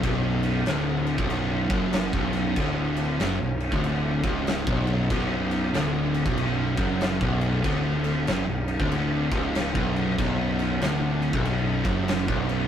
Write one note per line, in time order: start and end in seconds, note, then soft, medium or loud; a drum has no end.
0.03 0.63 B0 loud
0.03 0.66 B1 loud
0.03 kick loud
0.03 crash medium
0.43 crash medium
0.66 1.15 D1 loud
0.66 1.18 D2 loud
0.66 snare loud
0.66 crash medium
1.07 crash medium
1.18 1.66 B0 medium
1.18 1.68 B1 loud
1.18 kick loud
1.30 crash medium
1.69 2.10 F#1 medium
1.69 2.12 F#2 loud
1.69 kick loud
1.69 crash medium
1.93 snare loud
1.93 crash medium
2.13 2.54 B0 loud
2.13 2.56 B1 loud
2.13 kick loud
2.33 snare soft
2.33 crash medium
2.56 3.16 D1 loud
2.56 3.19 D2 loud
2.56 kick loud
2.56 crash medium
2.96 crash medium
3.19 3.39 F#1 loud
3.19 3.39 F#2 loud
3.19 snare loud
3.19 crash medium
3.40 3.70 B0 medium
3.40 3.67 B1 medium
3.60 crash medium
3.72 4.20 D1 medium
3.72 4.23 D2 loud
3.72 kick loud
3.84 crash medium
4.24 4.64 C#1 loud
4.24 4.66 C#2 loud
4.24 kick loud
4.24 crash medium
4.47 snare loud
4.47 crash medium
4.67 5.07 B0 loud
4.67 5.09 B1 loud
4.67 kick loud
4.87 crash medium
5.10 5.70 B0 medium
5.10 5.73 B1 loud
5.10 kick loud
5.10 crash medium
5.51 crash medium
5.73 6.22 D1 loud
5.73 6.25 D2 loud
5.73 snare loud
5.73 crash medium
6.14 crash medium
6.26 6.74 B0 medium
6.26 6.76 B1 loud
6.26 kick loud
6.37 crash medium
6.77 7.18 F#1 loud
6.77 7.20 F#2 loud
6.77 kick loud
6.77 crash medium
7.01 snare loud
7.01 crash medium
7.21 7.61 B0 loud
7.21 7.63 B1 loud
7.21 kick loud
7.41 crash medium
7.64 8.24 D1 medium
7.64 8.27 D2 loud
7.64 kick loud
7.64 crash medium
8.04 crash medium
8.27 8.46 F#1 loud
8.27 8.47 F#2 loud
8.27 snare loud
8.27 crash medium
8.47 8.77 B0 medium
8.47 8.75 B1 medium
8.68 crash medium
8.79 9.28 D1 medium
8.79 9.30 D2 loud
8.79 kick loud
8.92 crash medium
9.31 9.71 C#1 loud
9.31 9.73 C#2 loud
9.31 kick loud
9.31 crash medium
9.55 snare loud
9.55 crash medium
9.74 10.15 B0 loud
9.74 10.16 B1 loud
9.74 kick loud
9.96 crash medium
10.17 10.77 B0 medium
10.17 10.80 B1 loud
10.17 kick loud
10.17 crash medium
10.59 crash medium
10.81 11.29 D1 loud
10.81 11.32 D2 loud
10.81 snare loud
10.81 crash medium
11.22 crash medium
11.33 11.81 B0 medium
11.33 11.83 B1 loud
11.33 kick loud
11.45 crash medium
11.85 12.25 F#1 loud
11.85 12.26 F#2 loud
11.85 kick loud
11.85 crash medium
12.08 snare loud
12.08 crash medium
12.27 12.68 B0 loud
12.27 12.68 B1 loud
12.27 kick loud
12.49 crash medium